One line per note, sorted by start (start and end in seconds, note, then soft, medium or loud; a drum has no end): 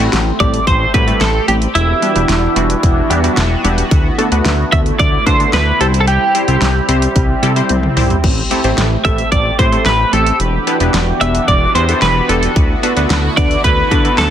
0.00 0.19 G3 medium
0.00 0.19 A3 medium
0.00 1.73 A3 medium
0.00 0.19 C4 medium
0.00 1.73 C4 medium
0.00 0.19 E4 medium
0.00 0.19 F#4 medium
0.00 3.87 G4 loud
0.13 0.32 A1 loud
0.13 snare loud
0.13 closed hi-hat medium
0.40 0.59 A1 loud
0.40 0.60 G3 medium
0.40 0.60 A3 medium
0.40 0.60 C4 medium
0.40 0.60 E4 medium
0.40 0.60 G4 medium
0.40 0.67 D5 loud
0.40 kick loud
0.40 closed hi-hat medium
0.54 closed hi-hat medium
0.67 0.86 A1 loud
0.67 0.94 C5 loud
0.67 kick medium
0.67 closed hi-hat medium
0.94 1.13 A2 loud
0.94 1.04 G3 medium
0.94 1.04 A3 medium
0.94 1.04 C4 medium
0.94 1.04 E4 medium
0.94 1.04 F#4 medium
0.94 1.22 B4 loud
0.94 kick loud
0.94 closed hi-hat medium
1.07 1.27 G3 medium
1.07 1.27 A3 medium
1.07 1.27 C4 medium
1.07 1.27 E4 medium
1.07 1.27 A4 medium
1.07 closed hi-hat medium
1.21 1.40 A1 loud
1.21 1.48 A4 loud
1.21 snare loud
1.21 closed hi-hat medium
1.48 1.67 A1 loud
1.48 1.68 G3 medium
1.48 1.68 A3 medium
1.48 1.68 C4 medium
1.48 1.68 E4 medium
1.48 1.68 G4 medium
1.48 1.55 G4 loud
1.48 closed hi-hat medium
1.62 closed hi-hat medium
1.75 1.94 E1 loud
1.75 3.89 E3 medium
1.75 5.77 B3 medium
1.75 3.89 D4 medium
1.75 3.60 E4 medium
1.75 5.77 F#4 medium
1.75 closed hi-hat medium
2.02 2.12 G3 medium
2.02 2.12 B3 medium
2.02 2.12 D4 medium
2.02 2.12 E4 medium
2.02 2.12 G4 medium
2.02 closed hi-hat medium
2.16 2.25 E1 medium
2.16 2.35 G3 medium
2.16 2.35 B3 medium
2.16 2.35 D4 medium
2.16 2.35 E4 medium
2.16 2.35 G4 medium
2.16 closed hi-hat medium
2.29 2.48 E1 loud
2.29 snare loud
2.29 closed hi-hat medium
2.56 2.75 E1 loud
2.56 2.76 G3 medium
2.56 2.76 B3 medium
2.56 2.76 D4 medium
2.56 2.76 E4 medium
2.56 2.76 F#4 loud
2.56 closed hi-hat medium
2.70 closed hi-hat medium
2.83 3.02 E1 loud
2.83 kick medium
2.83 closed hi-hat medium
3.10 3.29 E2 loud
3.10 3.20 G3 loud
3.10 3.20 B3 medium
3.10 3.20 D4 medium
3.10 3.20 E4 medium
3.10 3.20 G4 loud
3.10 closed hi-hat medium
3.24 3.43 G3 medium
3.24 3.43 B3 medium
3.24 3.44 D4 medium
3.24 3.43 E4 medium
3.24 3.43 F#4 medium
3.24 closed hi-hat medium
3.37 3.56 E1 loud
3.37 snare loud
3.37 closed hi-hat medium
3.64 3.83 E1 loud
3.64 3.84 G3 loud
3.64 3.84 B3 medium
3.64 3.84 D4 medium
3.64 3.84 E4 medium
3.64 3.84 G4 loud
3.64 closed hi-hat medium
3.78 closed hi-hat medium
3.91 4.10 D2 loud
3.91 5.79 D3 medium
3.91 5.79 A3 medium
3.91 8.20 E4 medium
3.91 kick loud
3.91 closed hi-hat medium
4.18 4.28 A3 medium
4.18 4.28 B3 medium
4.18 4.28 D4 medium
4.18 4.28 F#4 medium
4.18 4.28 A4 loud
4.18 closed hi-hat medium
4.32 4.41 D2 loud
4.32 4.52 A3 medium
4.32 4.52 B3 medium
4.32 4.52 D4 medium
4.32 4.52 F#4 medium
4.32 4.52 B4 medium
4.32 closed hi-hat medium
4.45 4.64 D2 loud
4.45 snare loud
4.45 closed hi-hat medium
4.72 4.91 D2 loud
4.72 4.92 A3 medium
4.72 4.92 B3 medium
4.72 4.92 D4 medium
4.72 4.92 F#4 medium
4.72 4.92 A4 medium
4.72 4.80 E5 loud
4.72 kick loud
4.72 closed hi-hat medium
4.86 closed hi-hat medium
4.99 5.18 D2 loud
4.99 5.26 D5 loud
4.99 kick medium
4.99 closed hi-hat medium
5.26 5.45 D3 loud
5.26 5.36 A3 medium
5.26 5.36 B3 medium
5.26 5.36 D4 medium
5.26 5.36 F#4 medium
5.26 5.36 A4 medium
5.26 5.52 C5 loud
5.26 kick loud
5.26 closed hi-hat medium
5.40 5.60 A3 medium
5.40 5.60 B3 medium
5.40 5.60 D4 medium
5.40 5.60 F#4 medium
5.40 5.60 A4 medium
5.40 closed hi-hat medium
5.53 5.72 D2 loud
5.53 5.79 B4 loud
5.53 snare loud
5.53 closed hi-hat medium
5.80 6.18 C2 loud
5.80 8.21 G3 medium
5.80 6.24 G3 medium
5.80 10.36 C4 medium
5.80 6.24 C4 medium
5.80 6.24 E4 medium
5.80 6.24 G4 medium
5.80 5.86 A4 medium
5.80 6.24 C5 loud
5.80 closed hi-hat medium
5.94 closed hi-hat medium
6.00 6.07 A4 medium
6.08 7.93 G4 medium
6.08 closed hi-hat medium
6.35 6.45 G3 medium
6.35 6.45 C4 medium
6.35 6.45 E4 medium
6.35 6.44 G4 medium
6.35 6.44 C5 medium
6.35 closed hi-hat medium
6.48 6.58 C2 loud
6.48 6.68 G3 medium
6.48 6.68 C4 medium
6.48 6.68 E4 medium
6.48 6.68 G4 medium
6.48 6.68 C5 medium
6.48 closed hi-hat medium
6.62 6.81 C2 loud
6.62 snare loud
6.62 closed hi-hat medium
6.89 7.08 C2 loud
6.89 7.08 G3 medium
6.89 7.08 C4 medium
6.89 7.08 E4 medium
6.89 7.08 G4 medium
6.89 7.08 C5 loud
6.89 closed hi-hat medium
7.02 closed hi-hat medium
7.16 7.35 C2 loud
7.16 kick medium
7.16 closed hi-hat medium
7.43 7.62 C3 loud
7.43 7.53 G3 loud
7.43 7.53 C4 medium
7.43 7.53 E4 medium
7.43 7.53 G4 medium
7.43 7.53 A4 loud
7.43 closed hi-hat medium
7.56 7.76 G3 medium
7.56 7.76 C4 medium
7.56 7.76 E4 medium
7.56 7.76 G4 medium
7.56 7.76 C5 medium
7.56 closed hi-hat medium
7.69 7.89 C2 loud
7.69 closed hi-hat medium
7.69 high tom medium
7.83 mid tom medium
7.97 8.16 C2 loud
7.97 8.16 G3 loud
7.97 8.16 C4 medium
7.97 8.16 E4 medium
7.97 8.16 G4 medium
7.97 8.16 C5 loud
7.97 mid tom loud
7.97 open hi-hat medium
8.10 closed hi-hat medium
8.10 floor tom loud
8.24 8.43 A1 loud
8.24 10.38 A3 medium
8.24 12.52 G4 loud
8.24 kick loud
8.24 crash medium
8.51 8.61 A3 medium
8.51 8.61 C4 medium
8.51 8.61 E4 medium
8.51 8.61 G4 medium
8.51 8.61 A4 loud
8.51 closed hi-hat medium
8.64 8.74 A1 medium
8.64 8.84 A3 medium
8.64 8.84 C4 medium
8.64 8.84 E4 medium
8.64 8.84 G4 medium
8.64 8.84 C5 medium
8.64 closed hi-hat medium
8.78 8.97 A1 loud
8.78 snare loud
8.78 closed hi-hat medium
9.05 9.24 A1 loud
9.05 9.25 A3 medium
9.05 9.25 C4 medium
9.05 9.25 E4 medium
9.05 9.25 G4 medium
9.05 9.25 A4 medium
9.05 9.31 E5 loud
9.05 kick loud
9.05 closed hi-hat medium
9.18 closed hi-hat medium
9.32 9.51 A1 loud
9.32 9.59 D5 loud
9.32 kick medium
9.32 closed hi-hat medium
9.59 9.78 A2 loud
9.59 9.69 A3 medium
9.59 9.69 C4 medium
9.59 9.69 E4 medium
9.59 9.69 G4 medium
9.59 9.69 C5 medium
9.59 9.86 C5 medium
9.59 kick loud
9.59 closed hi-hat medium
9.72 9.92 A3 medium
9.72 9.92 C4 medium
9.72 9.92 E4 medium
9.72 9.92 G4 medium
9.72 9.92 A4 medium
9.72 closed hi-hat medium
9.86 10.05 A1 loud
9.86 10.11 B4 loud
9.86 snare loud
9.86 closed hi-hat medium
10.13 10.32 A1 loud
10.13 10.33 A3 medium
10.13 10.33 C4 medium
10.13 10.33 E4 medium
10.13 10.33 G4 medium
10.13 10.33 A4 medium
10.13 10.38 A4 medium
10.13 closed hi-hat medium
10.26 closed hi-hat medium
10.40 10.59 E1 loud
10.40 12.54 E3 medium
10.40 14.30 B3 medium
10.40 12.54 D4 medium
10.40 12.54 F#4 medium
10.40 closed hi-hat medium
10.67 10.77 B3 medium
10.67 10.77 D4 medium
10.67 10.77 E4 medium
10.67 10.77 G4 medium
10.67 10.77 B4 loud
10.67 closed hi-hat medium
10.80 10.90 E1 medium
10.80 11.00 B3 medium
10.80 11.00 D4 medium
10.80 11.00 E4 medium
10.80 11.00 G4 medium
10.80 11.00 B4 medium
10.80 closed hi-hat medium
10.94 11.13 E1 loud
10.94 snare loud
10.94 closed hi-hat medium
11.21 11.40 E1 loud
11.21 11.41 B3 medium
11.21 11.41 D4 medium
11.21 11.41 E4 medium
11.21 11.41 G4 medium
11.21 11.41 B4 medium
11.21 11.46 E5 loud
11.21 closed hi-hat medium
11.35 closed hi-hat medium
11.48 11.67 E1 loud
11.48 11.75 D5 loud
11.48 kick medium
11.48 closed hi-hat medium
11.75 11.94 E2 loud
11.75 11.85 B3 medium
11.75 11.85 D4 medium
11.75 11.85 E4 medium
11.75 11.85 G4 medium
11.75 11.85 B4 medium
11.75 12.00 C5 loud
11.75 closed hi-hat medium
11.89 12.08 B3 medium
11.89 12.08 D4 medium
11.89 12.08 E4 medium
11.89 12.08 G4 medium
11.89 12.08 A4 medium
11.89 closed hi-hat medium
12.02 12.21 E1 loud
12.02 12.30 B4 loud
12.02 snare loud
12.02 closed hi-hat medium
12.29 12.48 E1 loud
12.29 12.49 B3 medium
12.29 12.49 D4 medium
12.29 12.49 E4 medium
12.29 12.49 G4 medium
12.29 12.54 A4 medium
12.29 12.49 B4 medium
12.29 closed hi-hat medium
12.43 closed hi-hat medium
12.56 12.75 D2 loud
12.56 14.30 D3 medium
12.56 14.30 A3 medium
12.56 14.30 E4 medium
12.56 14.30 F#4 loud
12.56 kick loud
12.56 closed hi-hat medium
12.83 12.93 B3 medium
12.83 12.93 D4 medium
12.83 12.93 F#4 medium
12.83 12.93 A4 medium
12.83 12.93 B4 loud
12.83 closed hi-hat medium
12.97 13.06 D2 loud
12.97 13.16 B3 medium
12.97 13.16 D4 medium
12.97 13.16 F#4 medium
12.97 13.16 A4 medium
12.97 13.16 B4 medium
12.97 closed hi-hat medium
13.10 13.29 D2 loud
13.10 snare loud
13.10 closed hi-hat medium
13.37 13.56 D2 loud
13.37 13.57 B3 medium
13.37 13.57 D4 medium
13.37 13.57 F#4 medium
13.37 13.57 A4 medium
13.37 13.57 B4 medium
13.37 13.64 D5 loud
13.37 kick loud
13.37 closed hi-hat medium
13.51 closed hi-hat medium
13.64 13.83 D2 loud
13.64 14.18 B4 loud
13.64 kick medium
13.64 closed hi-hat medium
13.91 14.10 D3 loud
13.91 14.01 B3 medium
13.91 14.01 D4 medium
13.91 14.01 F#4 medium
13.91 14.01 A4 medium
13.91 14.01 B4 medium
13.91 kick loud
13.91 closed hi-hat medium
14.05 14.24 B3 medium
14.05 14.25 D4 medium
14.05 14.24 F#4 medium
14.05 14.24 A4 medium
14.05 14.25 B4 medium
14.05 closed hi-hat medium
14.18 14.30 D2 loud
14.18 14.30 A4 loud
14.18 snare loud
14.18 closed hi-hat medium